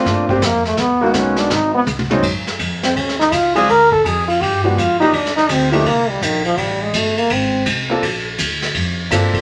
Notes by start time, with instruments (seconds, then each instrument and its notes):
Already playing: grand piano A3 A#3 C4 D4 F4, trombone C4
0.05 upright bass G2, trombone D4, brush sweep, kick, snare
0.29 grand piano A3 A#3 C4 D4 G4, trombone C4, kick
0.42 upright bass F2, trombone A#3, kick, snare, hi-hat pedal
0.65 trombone A3, snare
0.77 upright bass D#2, trombone B3, brush sweep, kick, snare
1.01 grand piano G#3 A#3 B3 D#4 F#4, trombone A#3
1.14 upright bass B1, trombone C#4, kick, snare, hi-hat pedal
1.36 trombone D4, snare
1.50 upright bass G#1, trombone D#4, brush sweep, kick, snare
1.74 trombone B3
1.87 upright bass C#2, hi-hat pedal, mid tom
1.99 mid tom
2.10 grand piano F#2 G#3 A#3 C4 C#4 D#4, mid tom
2.22 upright bass F#2, kick, crash
2.47 snare
2.59 upright bass F2, kick, hi-hat pedal, ride
2.83 trombone C4, snare
2.96 upright bass D#2, trombone C#4, kick, ride
3.09 snare
3.19 trombone D#4, snare
3.32 upright bass C#2, trombone F4, kick, hi-hat pedal, ride
3.55 grand piano F3 G#3 C4 D4 F4, trombone G#4, ride
3.68 upright bass D2, trombone A#4, kick, ride
3.92 trombone A4, kick
4.05 upright bass F2, trombone G#4, kick, hi-hat pedal, ride
4.28 trombone F4, ride
4.41 upright bass G2, trombone G4, kick, ride
4.64 grand piano F3 G#3 B3 D4 G4, trombone F#4
4.77 upright bass F2, trombone F4, kick, hi-hat pedal, ride
5.00 grand piano F3 A#3 D4 D#4 G4, trombone D#4, ride
5.13 upright bass D#2, trombone D4, kick, ride
5.26 snare
5.36 trombone D#4, snare
5.49 upright bass D2, trombone C4, kick, hi-hat pedal, ride
5.71 grand piano F3 A#3 D4 D#4 G4, trombone A3, ride
5.85 upright bass C2, trombone A#3, kick, ride
6.09 trombone G3
6.21 upright bass A#1, trombone D#3, kick, hi-hat pedal, ride
6.45 trombone F3, ride
6.57 upright bass A1, trombone G3, kick, ride
6.82 trombone G#3
6.93 upright bass G1, trombone A3, kick, hi-hat pedal, ride
7.17 trombone A#3, ride
7.30 upright bass G#1, trombone C4, kick, ride
7.66 upright bass C2, kick, hi-hat pedal, ride
7.89 grand piano A#3 C4 D4 F4 A4
8.02 upright bass A#1, kick, ride
8.38 upright bass D2, kick, hi-hat pedal, ride
8.62 snare, ride
8.75 upright bass F2, kick, ride
9.11 upright bass G2, grand piano A#3 C4 D4 F4 A4, kick, hi-hat pedal, ride
9.34 kick, ride